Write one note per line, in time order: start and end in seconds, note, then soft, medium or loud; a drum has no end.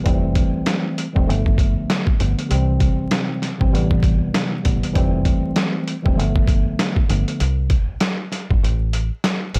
0.04 0.42 F1 loud
0.04 1.04 E3 loud
0.04 1.05 G3 medium
0.04 1.05 A3 medium
0.04 1.06 C4 loud
0.04 kick loud
0.04 closed hi-hat medium
0.35 kick medium
0.35 closed hi-hat medium
0.66 snare loud
0.66 closed hi-hat medium
0.98 closed hi-hat medium
1.13 1.26 E1 medium
1.13 1.27 E3 medium
1.13 1.27 G3 medium
1.13 1.26 A3 medium
1.13 1.28 C4 loud
1.13 kick medium
1.26 1.75 G1 loud
1.26 2.12 D3 medium
1.26 2.13 F3 medium
1.26 2.13 A3 medium
1.26 2.14 B3 medium
1.30 closed hi-hat medium
1.46 kick medium
1.58 kick loud
1.58 closed hi-hat medium
1.90 snare loud
1.90 closed hi-hat loud
2.07 kick loud
2.19 2.33 G1 medium
2.19 2.48 D3 medium
2.19 2.48 F3 medium
2.19 2.49 A3 medium
2.19 2.49 B3 medium
2.19 closed hi-hat medium
2.39 closed hi-hat medium
2.49 2.87 C2 loud
2.49 3.49 C3 loud
2.49 3.49 E3 medium
2.49 3.50 G3 medium
2.49 3.50 C4 loud
2.49 closed hi-hat medium
2.80 kick medium
2.80 closed hi-hat medium
3.11 snare loud
3.11 closed hi-hat medium
3.42 snare soft
3.42 closed hi-hat medium
3.58 3.71 G1 medium
3.58 3.70 C3 medium
3.58 3.71 E3 medium
3.58 3.72 G3 medium
3.58 3.73 C4 loud
3.58 kick loud
3.71 4.20 A1 loud
3.71 4.57 C3 medium
3.71 4.58 E3 medium
3.71 4.58 G3 medium
3.71 4.59 B3 loud
3.71 closed hi-hat medium
3.91 kick medium
4.03 kick loud
4.03 closed hi-hat medium
4.34 snare loud
4.34 closed hi-hat loud
4.62 4.79 A1 medium
4.62 4.92 C3 medium
4.62 4.92 E3 medium
4.62 4.93 G3 medium
4.62 4.93 B3 medium
4.62 kick medium
4.62 closed hi-hat medium
4.83 closed hi-hat medium
4.94 5.32 F1 loud
4.94 5.94 E3 loud
4.94 5.94 G3 medium
4.94 5.95 A3 medium
4.94 5.95 C4 loud
4.94 kick loud
4.94 closed hi-hat medium
5.25 kick medium
5.25 closed hi-hat medium
5.56 snare loud
5.56 closed hi-hat medium
5.88 closed hi-hat medium
6.02 6.15 E1 medium
6.02 6.17 E3 medium
6.02 6.17 G3 medium
6.02 6.16 A3 medium
6.02 6.18 C4 medium
6.02 kick medium
6.15 6.65 G1 loud
6.15 7.02 D3 medium
6.15 7.02 F3 medium
6.15 7.03 A3 medium
6.15 7.03 B3 medium
6.20 closed hi-hat medium
6.36 kick medium
6.47 kick loud
6.47 closed hi-hat medium
6.79 snare loud
6.79 closed hi-hat loud
6.96 kick loud
7.08 7.23 G1 medium
7.08 7.37 D3 medium
7.08 7.38 F3 medium
7.08 7.38 A3 medium
7.08 7.39 B3 medium
7.08 closed hi-hat medium
7.28 closed hi-hat medium
7.40 7.77 C2 loud
7.40 closed hi-hat medium
7.70 kick medium
7.70 closed hi-hat medium
8.00 snare loud
8.00 closed hi-hat medium
8.32 snare soft
8.32 closed hi-hat medium
8.50 8.60 G1 medium
8.50 kick loud
8.63 9.09 A1 loud
8.63 closed hi-hat medium
8.93 closed hi-hat medium
9.24 snare loud
9.24 closed hi-hat loud
9.54 9.59 A1 medium
9.54 closed hi-hat medium